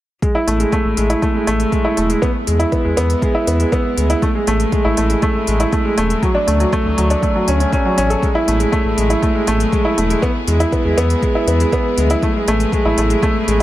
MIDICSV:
0, 0, Header, 1, 5, 480
1, 0, Start_track
1, 0, Tempo, 500000
1, 217, Time_signature, 4, 2, 24, 8
1, 13083, End_track
2, 0, Start_track
2, 0, Title_t, "String section"
2, 0, Program_c, 0, 48
2, 216, Note_on_c, 0, 54, 61
2, 414, Note_on_c, 0, 59, 55
2, 538, Note_on_c, 0, 64, 64
2, 941, Note_on_c, 0, 68, 62
2, 13083, Note_off_c, 0, 54, 0
2, 13083, Note_off_c, 0, 59, 0
2, 13083, Note_off_c, 0, 64, 0
2, 13083, Note_off_c, 0, 68, 0
2, 13083, End_track
3, 0, Start_track
3, 0, Title_t, "Upright piano"
3, 0, Program_c, 1, 0
3, 215, Note_on_c, 1, 56, 64
3, 330, Note_off_c, 1, 56, 0
3, 335, Note_on_c, 1, 64, 84
3, 426, Control_c, 1, 64, 127
3, 450, Note_off_c, 1, 64, 0
3, 455, Note_on_c, 1, 57, 60
3, 524, Note_off_c, 1, 57, 0
3, 576, Note_on_c, 1, 56, 63
3, 690, Note_off_c, 1, 56, 0
3, 696, Note_on_c, 1, 57, 77
3, 765, Note_off_c, 1, 57, 0
3, 934, Note_on_c, 1, 56, 64
3, 1049, Note_off_c, 1, 56, 0
3, 1054, Note_on_c, 1, 64, 77
3, 1170, Note_off_c, 1, 64, 0
3, 1173, Note_on_c, 1, 57, 69
3, 1243, Note_off_c, 1, 57, 0
3, 1294, Note_on_c, 1, 56, 62
3, 1410, Note_off_c, 1, 56, 0
3, 1414, Note_on_c, 1, 57, 86
3, 1484, Note_off_c, 1, 57, 0
3, 1652, Note_on_c, 1, 56, 64
3, 1769, Note_off_c, 1, 56, 0
3, 1772, Note_on_c, 1, 64, 84
3, 1888, Note_off_c, 1, 64, 0
3, 1891, Note_on_c, 1, 57, 62
3, 1963, Note_off_c, 1, 57, 0
3, 2014, Note_on_c, 1, 56, 67
3, 2129, Note_off_c, 1, 56, 0
3, 2131, Note_on_c, 1, 59, 84
3, 2149, Control_c, 1, 64, 0
3, 2202, Note_off_c, 1, 59, 0
3, 2302, Control_c, 1, 64, 127
3, 2370, Note_on_c, 1, 56, 62
3, 2487, Note_off_c, 1, 56, 0
3, 2490, Note_on_c, 1, 64, 88
3, 2608, Note_off_c, 1, 64, 0
3, 2613, Note_on_c, 1, 59, 63
3, 2683, Note_off_c, 1, 59, 0
3, 2732, Note_on_c, 1, 56, 64
3, 2848, Note_off_c, 1, 56, 0
3, 2851, Note_on_c, 1, 59, 90
3, 2923, Note_off_c, 1, 59, 0
3, 3095, Note_on_c, 1, 56, 70
3, 3210, Note_off_c, 1, 56, 0
3, 3212, Note_on_c, 1, 64, 92
3, 3329, Note_off_c, 1, 64, 0
3, 3336, Note_on_c, 1, 59, 66
3, 3405, Note_off_c, 1, 59, 0
3, 3455, Note_on_c, 1, 56, 60
3, 3570, Note_off_c, 1, 56, 0
3, 3575, Note_on_c, 1, 59, 83
3, 3644, Note_off_c, 1, 59, 0
3, 3814, Note_on_c, 1, 56, 62
3, 3929, Note_off_c, 1, 56, 0
3, 3934, Note_on_c, 1, 64, 90
3, 4050, Note_off_c, 1, 64, 0
3, 4055, Note_on_c, 1, 57, 68
3, 4069, Control_c, 1, 64, 0
3, 4125, Note_off_c, 1, 57, 0
3, 4176, Note_on_c, 1, 56, 68
3, 4225, Control_c, 1, 64, 127
3, 4290, Note_off_c, 1, 56, 0
3, 4296, Note_on_c, 1, 57, 80
3, 4365, Note_off_c, 1, 57, 0
3, 4533, Note_on_c, 1, 56, 69
3, 4649, Note_off_c, 1, 56, 0
3, 4653, Note_on_c, 1, 64, 88
3, 4769, Note_off_c, 1, 64, 0
3, 4776, Note_on_c, 1, 57, 68
3, 4845, Note_off_c, 1, 57, 0
3, 4897, Note_on_c, 1, 56, 59
3, 5011, Note_off_c, 1, 56, 0
3, 5017, Note_on_c, 1, 57, 81
3, 5085, Note_off_c, 1, 57, 0
3, 5259, Note_on_c, 1, 56, 67
3, 5372, Note_off_c, 1, 56, 0
3, 5377, Note_on_c, 1, 64, 85
3, 5491, Note_off_c, 1, 64, 0
3, 5496, Note_on_c, 1, 57, 70
3, 5565, Note_off_c, 1, 57, 0
3, 5617, Note_on_c, 1, 56, 67
3, 5731, Note_off_c, 1, 56, 0
3, 5737, Note_on_c, 1, 57, 83
3, 5805, Note_off_c, 1, 57, 0
3, 5976, Note_on_c, 1, 54, 72
3, 5988, Control_c, 1, 64, 0
3, 6091, Note_off_c, 1, 54, 0
3, 6092, Note_on_c, 1, 62, 85
3, 6140, Control_c, 1, 64, 127
3, 6209, Note_off_c, 1, 62, 0
3, 6214, Note_on_c, 1, 57, 65
3, 6284, Note_off_c, 1, 57, 0
3, 6338, Note_on_c, 1, 54, 64
3, 6451, Note_off_c, 1, 54, 0
3, 6458, Note_on_c, 1, 57, 85
3, 6526, Note_off_c, 1, 57, 0
3, 6697, Note_on_c, 1, 54, 67
3, 6811, Note_off_c, 1, 54, 0
3, 6819, Note_on_c, 1, 62, 80
3, 6932, Note_off_c, 1, 62, 0
3, 6939, Note_on_c, 1, 57, 66
3, 7007, Note_off_c, 1, 57, 0
3, 7060, Note_on_c, 1, 54, 65
3, 7173, Note_off_c, 1, 54, 0
3, 7179, Note_on_c, 1, 61, 65
3, 7285, Note_off_c, 1, 61, 0
3, 7299, Note_on_c, 1, 61, 58
3, 7366, Note_off_c, 1, 61, 0
3, 7419, Note_on_c, 1, 61, 75
3, 7532, Note_off_c, 1, 61, 0
3, 7539, Note_on_c, 1, 54, 62
3, 7652, Note_off_c, 1, 54, 0
3, 7658, Note_on_c, 1, 61, 81
3, 7772, Note_off_c, 1, 61, 0
3, 7776, Note_on_c, 1, 69, 67
3, 7891, Note_off_c, 1, 69, 0
3, 7897, Note_on_c, 1, 56, 66
3, 7909, Control_c, 1, 64, 0
3, 8011, Note_off_c, 1, 56, 0
3, 8016, Note_on_c, 1, 64, 88
3, 8064, Control_c, 1, 64, 127
3, 8130, Note_off_c, 1, 64, 0
3, 8138, Note_on_c, 1, 57, 62
3, 8206, Note_off_c, 1, 57, 0
3, 8256, Note_on_c, 1, 56, 63
3, 8371, Note_off_c, 1, 56, 0
3, 8373, Note_on_c, 1, 57, 81
3, 8443, Note_off_c, 1, 57, 0
3, 8613, Note_on_c, 1, 56, 65
3, 8729, Note_off_c, 1, 56, 0
3, 8735, Note_on_c, 1, 64, 75
3, 8850, Note_off_c, 1, 64, 0
3, 8855, Note_on_c, 1, 57, 68
3, 8924, Note_off_c, 1, 57, 0
3, 8975, Note_on_c, 1, 56, 65
3, 9090, Note_off_c, 1, 56, 0
3, 9097, Note_on_c, 1, 57, 88
3, 9166, Note_off_c, 1, 57, 0
3, 9336, Note_on_c, 1, 56, 69
3, 9451, Note_off_c, 1, 56, 0
3, 9454, Note_on_c, 1, 64, 88
3, 9569, Note_off_c, 1, 64, 0
3, 9576, Note_on_c, 1, 57, 63
3, 9645, Note_off_c, 1, 57, 0
3, 9696, Note_on_c, 1, 56, 66
3, 9811, Note_off_c, 1, 56, 0
3, 9816, Note_on_c, 1, 59, 90
3, 9830, Control_c, 1, 64, 0
3, 9885, Note_off_c, 1, 59, 0
3, 9996, Control_c, 1, 64, 127
3, 10057, Note_on_c, 1, 56, 67
3, 10171, Note_off_c, 1, 56, 0
3, 10176, Note_on_c, 1, 64, 85
3, 10291, Note_off_c, 1, 64, 0
3, 10295, Note_on_c, 1, 59, 67
3, 10364, Note_off_c, 1, 59, 0
3, 10414, Note_on_c, 1, 56, 69
3, 10530, Note_off_c, 1, 56, 0
3, 10536, Note_on_c, 1, 59, 95
3, 10605, Note_off_c, 1, 59, 0
3, 10776, Note_on_c, 1, 56, 71
3, 10890, Note_off_c, 1, 56, 0
3, 10897, Note_on_c, 1, 64, 88
3, 11011, Note_off_c, 1, 64, 0
3, 11018, Note_on_c, 1, 59, 65
3, 11086, Note_off_c, 1, 59, 0
3, 11139, Note_on_c, 1, 56, 67
3, 11252, Note_off_c, 1, 56, 0
3, 11261, Note_on_c, 1, 59, 88
3, 11327, Note_off_c, 1, 59, 0
3, 11501, Note_on_c, 1, 56, 66
3, 11613, Note_off_c, 1, 56, 0
3, 11621, Note_on_c, 1, 64, 94
3, 11733, Note_off_c, 1, 64, 0
3, 11742, Note_on_c, 1, 57, 74
3, 11749, Control_c, 1, 64, 0
3, 11808, Note_off_c, 1, 57, 0
3, 11863, Note_on_c, 1, 56, 72
3, 11915, Control_c, 1, 64, 127
3, 11974, Note_off_c, 1, 56, 0
3, 11982, Note_on_c, 1, 57, 89
3, 12048, Note_off_c, 1, 57, 0
3, 12224, Note_on_c, 1, 56, 71
3, 12334, Note_off_c, 1, 56, 0
3, 12340, Note_on_c, 1, 64, 86
3, 12452, Note_off_c, 1, 64, 0
3, 12463, Note_on_c, 1, 57, 70
3, 12528, Note_off_c, 1, 57, 0
3, 12579, Note_on_c, 1, 56, 66
3, 12692, Note_off_c, 1, 56, 0
3, 12698, Note_on_c, 1, 57, 85
3, 12766, Note_off_c, 1, 57, 0
3, 12941, Note_on_c, 1, 56, 72
3, 13053, Note_off_c, 1, 56, 0
3, 13083, End_track
4, 0, Start_track
4, 0, Title_t, "Analog synth bass"
4, 0, Program_c, 2, 38
4, 455, Note_on_c, 2, 33, 86
4, 625, Note_off_c, 2, 33, 0
4, 813, Note_on_c, 2, 33, 84
4, 899, Note_off_c, 2, 33, 0
4, 933, Note_on_c, 2, 33, 83
4, 1104, Note_off_c, 2, 33, 0
4, 1414, Note_on_c, 2, 33, 86
4, 1584, Note_off_c, 2, 33, 0
4, 1896, Note_on_c, 2, 28, 71
4, 2065, Note_off_c, 2, 28, 0
4, 2377, Note_on_c, 2, 40, 88
4, 2546, Note_off_c, 2, 40, 0
4, 2732, Note_on_c, 2, 40, 84
4, 2819, Note_off_c, 2, 40, 0
4, 2854, Note_on_c, 2, 40, 83
4, 3024, Note_off_c, 2, 40, 0
4, 3333, Note_on_c, 2, 40, 85
4, 3504, Note_off_c, 2, 40, 0
4, 3814, Note_on_c, 2, 38, 78
4, 3984, Note_off_c, 2, 38, 0
4, 4296, Note_on_c, 2, 33, 88
4, 4465, Note_off_c, 2, 33, 0
4, 4658, Note_on_c, 2, 33, 84
4, 4742, Note_off_c, 2, 33, 0
4, 4780, Note_on_c, 2, 33, 86
4, 4948, Note_off_c, 2, 33, 0
4, 5257, Note_on_c, 2, 33, 93
4, 5426, Note_off_c, 2, 33, 0
4, 5737, Note_on_c, 2, 28, 73
4, 5906, Note_off_c, 2, 28, 0
4, 6216, Note_on_c, 2, 38, 93
4, 6386, Note_off_c, 2, 38, 0
4, 6578, Note_on_c, 2, 38, 79
4, 6662, Note_off_c, 2, 38, 0
4, 6700, Note_on_c, 2, 38, 84
4, 6868, Note_off_c, 2, 38, 0
4, 7180, Note_on_c, 2, 38, 85
4, 7348, Note_off_c, 2, 38, 0
4, 7659, Note_on_c, 2, 33, 69
4, 7827, Note_off_c, 2, 33, 0
4, 8139, Note_on_c, 2, 33, 96
4, 8307, Note_off_c, 2, 33, 0
4, 8496, Note_on_c, 2, 33, 83
4, 8581, Note_off_c, 2, 33, 0
4, 8617, Note_on_c, 2, 33, 86
4, 8786, Note_off_c, 2, 33, 0
4, 9098, Note_on_c, 2, 33, 85
4, 9267, Note_off_c, 2, 33, 0
4, 9577, Note_on_c, 2, 28, 75
4, 9746, Note_off_c, 2, 28, 0
4, 10055, Note_on_c, 2, 40, 95
4, 10225, Note_off_c, 2, 40, 0
4, 10414, Note_on_c, 2, 40, 84
4, 10500, Note_off_c, 2, 40, 0
4, 10534, Note_on_c, 2, 40, 83
4, 10704, Note_off_c, 2, 40, 0
4, 11013, Note_on_c, 2, 40, 90
4, 11184, Note_off_c, 2, 40, 0
4, 11496, Note_on_c, 2, 38, 78
4, 11665, Note_off_c, 2, 38, 0
4, 11976, Note_on_c, 2, 33, 88
4, 12146, Note_off_c, 2, 33, 0
4, 12337, Note_on_c, 2, 33, 88
4, 12421, Note_off_c, 2, 33, 0
4, 12456, Note_on_c, 2, 33, 91
4, 12626, Note_off_c, 2, 33, 0
4, 12936, Note_on_c, 2, 33, 93
4, 13083, Note_off_c, 2, 33, 0
4, 13083, End_track
5, 0, Start_track
5, 0, Title_t, "Drums"
5, 215, Note_on_c, 9, 36, 88
5, 217, Note_on_c, 9, 42, 23
5, 311, Note_off_c, 9, 36, 0
5, 313, Note_off_c, 9, 42, 0
5, 457, Note_on_c, 9, 42, 57
5, 553, Note_off_c, 9, 42, 0
5, 576, Note_on_c, 9, 42, 34
5, 672, Note_off_c, 9, 42, 0
5, 694, Note_on_c, 9, 36, 74
5, 696, Note_on_c, 9, 42, 26
5, 790, Note_off_c, 9, 36, 0
5, 792, Note_off_c, 9, 42, 0
5, 934, Note_on_c, 9, 42, 61
5, 1030, Note_off_c, 9, 42, 0
5, 1056, Note_on_c, 9, 42, 35
5, 1152, Note_off_c, 9, 42, 0
5, 1174, Note_on_c, 9, 36, 88
5, 1176, Note_on_c, 9, 42, 27
5, 1270, Note_off_c, 9, 36, 0
5, 1272, Note_off_c, 9, 42, 0
5, 1415, Note_on_c, 9, 42, 63
5, 1511, Note_off_c, 9, 42, 0
5, 1534, Note_on_c, 9, 42, 37
5, 1630, Note_off_c, 9, 42, 0
5, 1654, Note_on_c, 9, 36, 86
5, 1655, Note_on_c, 9, 42, 28
5, 1750, Note_off_c, 9, 36, 0
5, 1751, Note_off_c, 9, 42, 0
5, 1894, Note_on_c, 9, 42, 59
5, 1990, Note_off_c, 9, 42, 0
5, 2014, Note_on_c, 9, 42, 36
5, 2110, Note_off_c, 9, 42, 0
5, 2134, Note_on_c, 9, 36, 89
5, 2137, Note_on_c, 9, 42, 28
5, 2230, Note_off_c, 9, 36, 0
5, 2233, Note_off_c, 9, 42, 0
5, 2374, Note_on_c, 9, 42, 58
5, 2470, Note_off_c, 9, 42, 0
5, 2494, Note_on_c, 9, 42, 36
5, 2590, Note_off_c, 9, 42, 0
5, 2613, Note_on_c, 9, 36, 82
5, 2614, Note_on_c, 9, 42, 26
5, 2709, Note_off_c, 9, 36, 0
5, 2710, Note_off_c, 9, 42, 0
5, 2854, Note_on_c, 9, 42, 65
5, 2950, Note_off_c, 9, 42, 0
5, 2975, Note_on_c, 9, 42, 36
5, 3071, Note_off_c, 9, 42, 0
5, 3093, Note_on_c, 9, 36, 91
5, 3095, Note_on_c, 9, 42, 30
5, 3189, Note_off_c, 9, 36, 0
5, 3191, Note_off_c, 9, 42, 0
5, 3335, Note_on_c, 9, 42, 70
5, 3431, Note_off_c, 9, 42, 0
5, 3454, Note_on_c, 9, 42, 38
5, 3550, Note_off_c, 9, 42, 0
5, 3573, Note_on_c, 9, 36, 90
5, 3577, Note_on_c, 9, 42, 29
5, 3669, Note_off_c, 9, 36, 0
5, 3673, Note_off_c, 9, 42, 0
5, 3816, Note_on_c, 9, 42, 63
5, 3912, Note_off_c, 9, 42, 0
5, 3934, Note_on_c, 9, 42, 38
5, 4030, Note_off_c, 9, 42, 0
5, 4054, Note_on_c, 9, 36, 98
5, 4056, Note_on_c, 9, 42, 26
5, 4150, Note_off_c, 9, 36, 0
5, 4152, Note_off_c, 9, 42, 0
5, 4294, Note_on_c, 9, 42, 65
5, 4390, Note_off_c, 9, 42, 0
5, 4414, Note_on_c, 9, 42, 38
5, 4510, Note_off_c, 9, 42, 0
5, 4534, Note_on_c, 9, 36, 91
5, 4534, Note_on_c, 9, 42, 28
5, 4630, Note_off_c, 9, 36, 0
5, 4630, Note_off_c, 9, 42, 0
5, 4773, Note_on_c, 9, 42, 67
5, 4869, Note_off_c, 9, 42, 0
5, 4894, Note_on_c, 9, 42, 36
5, 4990, Note_off_c, 9, 42, 0
5, 5014, Note_on_c, 9, 42, 29
5, 5015, Note_on_c, 9, 36, 94
5, 5110, Note_off_c, 9, 42, 0
5, 5111, Note_off_c, 9, 36, 0
5, 5255, Note_on_c, 9, 42, 64
5, 5351, Note_off_c, 9, 42, 0
5, 5375, Note_on_c, 9, 42, 39
5, 5471, Note_off_c, 9, 42, 0
5, 5496, Note_on_c, 9, 36, 89
5, 5496, Note_on_c, 9, 42, 30
5, 5592, Note_off_c, 9, 36, 0
5, 5592, Note_off_c, 9, 42, 0
5, 5737, Note_on_c, 9, 42, 61
5, 5833, Note_off_c, 9, 42, 0
5, 5858, Note_on_c, 9, 42, 37
5, 5954, Note_off_c, 9, 42, 0
5, 5976, Note_on_c, 9, 36, 97
5, 5978, Note_on_c, 9, 42, 26
5, 6072, Note_off_c, 9, 36, 0
5, 6074, Note_off_c, 9, 42, 0
5, 6218, Note_on_c, 9, 42, 63
5, 6314, Note_off_c, 9, 42, 0
5, 6338, Note_on_c, 9, 42, 34
5, 6434, Note_off_c, 9, 42, 0
5, 6456, Note_on_c, 9, 36, 86
5, 6460, Note_on_c, 9, 42, 28
5, 6552, Note_off_c, 9, 36, 0
5, 6556, Note_off_c, 9, 42, 0
5, 6700, Note_on_c, 9, 42, 64
5, 6796, Note_off_c, 9, 42, 0
5, 6819, Note_on_c, 9, 42, 38
5, 6915, Note_off_c, 9, 42, 0
5, 6936, Note_on_c, 9, 36, 89
5, 6940, Note_on_c, 9, 42, 30
5, 7032, Note_off_c, 9, 36, 0
5, 7036, Note_off_c, 9, 42, 0
5, 7178, Note_on_c, 9, 42, 69
5, 7274, Note_off_c, 9, 42, 0
5, 7299, Note_on_c, 9, 42, 40
5, 7395, Note_off_c, 9, 42, 0
5, 7416, Note_on_c, 9, 36, 92
5, 7420, Note_on_c, 9, 42, 29
5, 7512, Note_off_c, 9, 36, 0
5, 7516, Note_off_c, 9, 42, 0
5, 7658, Note_on_c, 9, 42, 64
5, 7754, Note_off_c, 9, 42, 0
5, 7780, Note_on_c, 9, 42, 37
5, 7876, Note_off_c, 9, 42, 0
5, 7896, Note_on_c, 9, 36, 91
5, 7901, Note_on_c, 9, 42, 25
5, 7992, Note_off_c, 9, 36, 0
5, 7997, Note_off_c, 9, 42, 0
5, 8140, Note_on_c, 9, 42, 62
5, 8236, Note_off_c, 9, 42, 0
5, 8257, Note_on_c, 9, 42, 37
5, 8353, Note_off_c, 9, 42, 0
5, 8377, Note_on_c, 9, 36, 86
5, 8377, Note_on_c, 9, 42, 28
5, 8473, Note_off_c, 9, 36, 0
5, 8473, Note_off_c, 9, 42, 0
5, 8618, Note_on_c, 9, 42, 65
5, 8714, Note_off_c, 9, 42, 0
5, 8737, Note_on_c, 9, 42, 35
5, 8833, Note_off_c, 9, 42, 0
5, 8856, Note_on_c, 9, 36, 95
5, 8858, Note_on_c, 9, 42, 29
5, 8952, Note_off_c, 9, 36, 0
5, 8954, Note_off_c, 9, 42, 0
5, 9094, Note_on_c, 9, 42, 65
5, 9190, Note_off_c, 9, 42, 0
5, 9218, Note_on_c, 9, 42, 38
5, 9314, Note_off_c, 9, 42, 0
5, 9335, Note_on_c, 9, 36, 88
5, 9340, Note_on_c, 9, 42, 29
5, 9431, Note_off_c, 9, 36, 0
5, 9436, Note_off_c, 9, 42, 0
5, 9580, Note_on_c, 9, 42, 63
5, 9676, Note_off_c, 9, 42, 0
5, 9699, Note_on_c, 9, 42, 38
5, 9795, Note_off_c, 9, 42, 0
5, 9815, Note_on_c, 9, 36, 91
5, 9819, Note_on_c, 9, 42, 25
5, 9911, Note_off_c, 9, 36, 0
5, 9915, Note_off_c, 9, 42, 0
5, 10056, Note_on_c, 9, 42, 58
5, 10152, Note_off_c, 9, 42, 0
5, 10178, Note_on_c, 9, 42, 33
5, 10274, Note_off_c, 9, 42, 0
5, 10295, Note_on_c, 9, 36, 85
5, 10298, Note_on_c, 9, 42, 26
5, 10391, Note_off_c, 9, 36, 0
5, 10394, Note_off_c, 9, 42, 0
5, 10537, Note_on_c, 9, 42, 59
5, 10633, Note_off_c, 9, 42, 0
5, 10657, Note_on_c, 9, 42, 35
5, 10753, Note_off_c, 9, 42, 0
5, 10775, Note_on_c, 9, 36, 87
5, 10777, Note_on_c, 9, 42, 28
5, 10871, Note_off_c, 9, 36, 0
5, 10873, Note_off_c, 9, 42, 0
5, 11016, Note_on_c, 9, 42, 60
5, 11112, Note_off_c, 9, 42, 0
5, 11138, Note_on_c, 9, 42, 36
5, 11234, Note_off_c, 9, 42, 0
5, 11255, Note_on_c, 9, 36, 88
5, 11257, Note_on_c, 9, 42, 27
5, 11351, Note_off_c, 9, 36, 0
5, 11353, Note_off_c, 9, 42, 0
5, 11497, Note_on_c, 9, 42, 65
5, 11593, Note_off_c, 9, 42, 0
5, 11616, Note_on_c, 9, 42, 36
5, 11712, Note_off_c, 9, 42, 0
5, 11735, Note_on_c, 9, 36, 88
5, 11737, Note_on_c, 9, 42, 24
5, 11831, Note_off_c, 9, 36, 0
5, 11833, Note_off_c, 9, 42, 0
5, 11977, Note_on_c, 9, 42, 59
5, 12073, Note_off_c, 9, 42, 0
5, 12097, Note_on_c, 9, 42, 35
5, 12193, Note_off_c, 9, 42, 0
5, 12215, Note_on_c, 9, 36, 77
5, 12220, Note_on_c, 9, 42, 27
5, 12311, Note_off_c, 9, 36, 0
5, 12316, Note_off_c, 9, 42, 0
5, 12458, Note_on_c, 9, 42, 62
5, 12554, Note_off_c, 9, 42, 0
5, 12578, Note_on_c, 9, 42, 36
5, 12674, Note_off_c, 9, 42, 0
5, 12696, Note_on_c, 9, 36, 90
5, 12699, Note_on_c, 9, 42, 27
5, 12792, Note_off_c, 9, 36, 0
5, 12795, Note_off_c, 9, 42, 0
5, 12940, Note_on_c, 9, 42, 65
5, 13036, Note_off_c, 9, 42, 0
5, 13083, End_track
0, 0, End_of_file